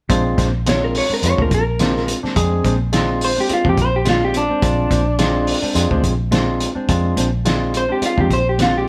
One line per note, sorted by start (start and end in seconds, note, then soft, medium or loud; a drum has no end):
0.09 0.33 A#1 medium
0.09 0.25 A#2 medium
0.09 0.47 G#3 medium
0.09 0.25 G#3 medium
0.09 0.47 C4 medium
0.09 0.24 C4 medium
0.09 0.47 D4 medium
0.09 0.24 D4 medium
0.09 0.47 F4 loud
0.09 kick loud
0.09 closed hi-hat medium
0.25 muted clean electric guitar stroke soft
0.37 0.99 A#1 medium
0.37 0.53 A#2 medium
0.37 0.53 G#3 medium
0.37 0.53 C4 medium
0.37 0.52 D4 medium
0.37 kick medium
0.37 snare soft
0.37 closed hi-hat medium
0.53 muted clean electric guitar stroke soft
0.66 1.04 G#3 medium
0.66 1.04 C4 medium
0.66 1.04 D4 medium
0.66 1.04 F4 medium
0.66 0.83 C#5 medium
0.66 snare loud
0.66 closed hi-hat medium
0.82 0.95 A#4 medium
0.82 muted clean electric guitar stroke soft
0.95 1.11 C#5 medium
0.95 muted clean electric guitar stroke soft
0.95 open hi-hat medium
1.10 1.22 G#3 soft
1.10 1.23 C4 soft
1.10 1.23 D4 soft
1.10 muted fingered electric bass stroke soft
1.14 1.24 A#4 medium
1.23 1.36 F2 medium
1.23 1.61 G#3 medium
1.23 1.61 C4 medium
1.23 1.61 D4 medium
1.23 1.61 F4 medium
1.23 1.39 C#5 medium
1.23 muted clean electric guitar stroke soft
1.23 closed hi-hat medium
1.38 1.49 D2 medium
1.38 1.50 A#2 medium
1.38 1.50 G#3 medium
1.38 1.51 C4 medium
1.38 1.51 D4 medium
1.38 1.53 A#4 medium
1.38 kick medium
1.51 2.12 A#1 medium
1.51 2.08 A#4 medium
1.51 muted clean electric guitar stroke soft
1.51 kick medium
1.51 closed hi-hat medium
1.79 1.95 A#2 medium
1.79 2.17 G#3 medium
1.79 1.95 G#3 medium
1.79 2.17 C4 medium
1.79 1.95 C4 medium
1.79 2.17 D4 medium
1.79 1.94 D4 medium
1.79 2.17 F4 medium
1.79 snare loud
1.79 closed hi-hat medium
1.95 muted clean electric guitar stroke soft
1.95 snare soft
2.08 muted clean electric guitar stroke soft
2.08 closed hi-hat medium
2.23 2.40 G#3 soft
2.23 2.40 C4 medium
2.23 2.39 D4 medium
2.23 muted fingered electric bass stroke soft
2.23 snare soft
2.36 2.60 F2 loud
2.36 2.74 G#3 medium
2.36 2.74 C4 medium
2.36 2.74 D4 medium
2.36 2.74 G#4 loud
2.36 kick loud
2.36 closed hi-hat medium
2.52 muted clean electric guitar stroke soft
2.64 3.36 A#1 medium
2.64 2.80 A#2 medium
2.64 2.80 G#3 medium
2.64 2.79 C4 medium
2.64 2.79 D4 medium
2.64 kick medium
2.64 closed hi-hat medium
2.80 muted clean electric guitar stroke soft
2.93 3.30 G#3 loud
2.93 3.30 C4 medium
2.93 3.30 D4 medium
2.93 3.31 F4 loud
2.93 snare loud
2.93 closed hi-hat medium
3.08 muted clean electric guitar stroke soft
3.21 3.38 C5 medium
3.21 muted clean electric guitar stroke soft
3.21 open hi-hat medium
3.36 3.49 G#3 soft
3.36 3.49 C4 soft
3.36 3.49 D4 soft
3.40 3.51 G4 medium
3.49 3.87 G#3 medium
3.49 3.87 C4 medium
3.49 3.87 D4 medium
3.49 3.87 F4 medium
3.49 muted clean electric guitar stroke soft
3.49 muted fingered electric bass stroke soft
3.49 closed hi-hat medium
3.54 3.66 F4 medium
3.65 3.76 F2 medium
3.65 3.76 A#2 medium
3.65 3.77 G#3 medium
3.65 3.77 C4 medium
3.65 3.77 D4 medium
3.65 kick medium
3.69 3.79 G4 medium
3.77 4.49 A#1 medium
3.77 kick medium
3.77 closed hi-hat medium
3.82 3.95 C5 medium
3.96 4.07 G4 medium
4.05 4.21 A#2 medium
4.05 4.43 G#3 medium
4.05 4.22 G#3 medium
4.05 4.43 C4 medium
4.05 4.21 C4 medium
4.05 4.43 D4 medium
4.05 4.21 D4 medium
4.05 4.43 F4 medium
4.05 snare medium
4.05 closed hi-hat medium
4.09 4.23 F4 medium
4.22 4.35 G4 medium
4.22 muted clean electric guitar stroke soft
4.34 6.01 D4 medium
4.34 muted clean electric guitar stroke soft
4.34 closed hi-hat medium
4.49 4.66 G#3 soft
4.49 4.66 C4 medium
4.49 4.65 D4 medium
4.62 4.86 A#1 medium
4.62 5.00 G#3 medium
4.62 5.00 C4 medium
4.62 5.00 D4 medium
4.62 5.00 F4 medium
4.62 kick loud
4.62 closed hi-hat medium
4.78 muted clean electric guitar stroke soft
4.90 5.52 A#1 medium
4.90 5.06 A#2 medium
4.90 5.06 G#3 medium
4.90 5.05 C4 medium
4.90 5.05 D4 medium
4.90 kick medium
4.90 closed hi-hat medium
5.06 muted clean electric guitar stroke soft
5.19 5.57 G#3 loud
5.19 5.57 C4 medium
5.19 5.57 D4 medium
5.19 5.57 F4 loud
5.19 snare loud
5.19 closed hi-hat medium
5.35 muted clean electric guitar stroke soft
5.47 muted clean electric guitar stroke soft
5.47 open hi-hat medium
5.62 5.75 G#3 soft
5.62 5.75 C4 soft
5.62 5.75 D4 medium
5.62 muted fingered electric bass stroke soft
5.75 5.88 F2 medium
5.75 6.13 G#3 loud
5.75 6.13 C4 medium
5.75 6.13 D4 medium
5.75 6.13 F4 medium
5.75 muted clean electric guitar stroke soft
5.75 closed hi-hat medium
5.91 6.02 D2 medium
5.91 6.02 A#2 medium
5.91 6.03 G#3 medium
5.91 6.03 C4 medium
5.91 6.03 D4 medium
5.91 kick medium
6.03 6.65 A#1 medium
6.03 muted clean electric guitar stroke soft
6.03 kick medium
6.03 closed hi-hat medium
6.31 6.47 A#2 medium
6.31 6.70 G#3 medium
6.31 6.47 G#3 medium
6.31 6.70 C4 medium
6.31 6.46 C4 medium
6.31 6.70 D4 medium
6.31 6.46 D4 medium
6.31 6.70 F4 medium
6.31 snare loud
6.31 closed hi-hat medium
6.47 muted clean electric guitar stroke soft
6.60 muted clean electric guitar stroke soft
6.60 closed hi-hat medium
6.75 6.92 G#3 soft
6.75 6.92 C4 medium
6.75 6.92 D4 medium
6.75 muted fingered electric bass stroke soft
6.88 7.13 F2 medium
6.88 7.26 G#3 medium
6.88 7.27 C4 medium
6.88 7.27 D4 medium
6.88 7.27 F4 loud
6.88 kick loud
6.88 closed hi-hat medium
7.04 muted clean electric guitar stroke soft
7.17 7.89 A#1 medium
7.17 7.32 A#2 medium
7.17 7.32 G#3 medium
7.17 7.32 C4 medium
7.17 7.31 D4 medium
7.17 closed hi-hat medium
7.32 muted clean electric guitar stroke soft
7.45 7.83 G#3 medium
7.45 7.83 C4 medium
7.45 7.83 D4 medium
7.45 7.83 F4 loud
7.45 snare loud
7.45 closed hi-hat medium
7.60 muted clean electric guitar stroke soft
7.73 7.91 C5 medium
7.73 muted clean electric guitar stroke soft
7.73 closed hi-hat medium
7.89 8.01 G#3 soft
7.89 8.01 C4 soft
7.89 8.02 D4 medium
7.89 8.03 G4 medium
8.02 8.40 G#3 medium
8.02 8.40 C4 medium
8.02 8.40 D4 medium
8.02 8.40 F4 medium
8.02 muted fingered electric bass stroke soft
8.02 muted clean electric guitar stroke soft
8.02 closed hi-hat medium
8.06 8.19 F4 medium
8.17 8.29 F2 medium
8.17 8.29 A#2 medium
8.17 8.29 G#3 medium
8.17 8.30 C4 medium
8.17 8.30 D4 medium
8.17 8.32 G4 medium
8.17 kick medium
8.30 8.88 A#1 medium
8.30 8.47 C5 medium
8.30 kick medium
8.30 closed hi-hat medium
8.49 8.60 G4 medium
8.58 8.74 A#2 medium
8.58 8.74 G#3 medium
8.58 8.88 G#3 medium
8.58 8.88 C4 medium
8.58 8.73 C4 medium
8.58 8.88 D4 medium
8.58 8.73 D4 medium
8.58 8.88 F4 medium
8.58 snare medium
8.58 closed hi-hat medium
8.62 8.76 F4 medium
8.74 8.88 G4 medium
8.74 muted clean electric guitar stroke soft